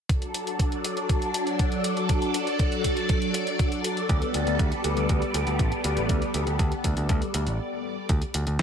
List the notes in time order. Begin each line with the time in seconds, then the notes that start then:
0.09 F#3 D4 A4 D5, kick, closed hi-hat
0.22 closed hi-hat
0.34 closed hi-hat
0.47 closed hi-hat
0.59 kick, closed hi-hat
0.72 closed hi-hat
0.84 closed hi-hat
0.97 closed hi-hat
1.09 kick, closed hi-hat
1.22 closed hi-hat
1.34 closed hi-hat
1.47 closed hi-hat
1.59 kick, closed hi-hat
1.72 closed hi-hat
1.84 closed hi-hat
1.97 closed hi-hat
2.09 kick, closed hi-hat
2.22 closed hi-hat
2.34 closed hi-hat
2.47 closed hi-hat
2.59 kick, closed hi-hat
2.72 closed hi-hat
2.84 kick, closed hi-hat
2.97 closed hi-hat
3.09 kick, closed hi-hat
3.22 closed hi-hat
3.34 closed hi-hat
3.47 closed hi-hat
3.59 kick, closed hi-hat
3.72 closed hi-hat
3.84 closed hi-hat
3.97 closed hi-hat
4.09 D2 G3 B3, kick, closed hi-hat
4.22 closed hi-hat
4.34 D2, closed hi-hat
4.47 D2, closed hi-hat
4.59 D2, kick, closed hi-hat
4.72 closed hi-hat
4.84 D2, closed hi-hat
4.97 D2, closed hi-hat
5.09 D2, kick, closed hi-hat
5.22 closed hi-hat
5.34 D2, closed hi-hat
5.47 D2, closed hi-hat
5.59 A1, kick, closed hi-hat
5.72 closed hi-hat
5.84 D2, closed hi-hat
5.97 A1, closed hi-hat
6.09 D2, kick, closed hi-hat
6.22 closed hi-hat
6.34 D2, closed hi-hat
6.47 D2, closed hi-hat
6.59 D2, kick, closed hi-hat
6.72 closed hi-hat
6.84 D2, kick, closed hi-hat
6.97 D2, closed hi-hat
7.09 D2, kick, closed hi-hat
7.22 closed hi-hat
7.34 D2, closed hi-hat
7.47 A1, closed hi-hat
8.09 D2, kick, closed hi-hat
8.22 closed hi-hat
8.34 D2, closed hi-hat
8.47 D2, closed hi-hat
8.59 snare, closed hi-hat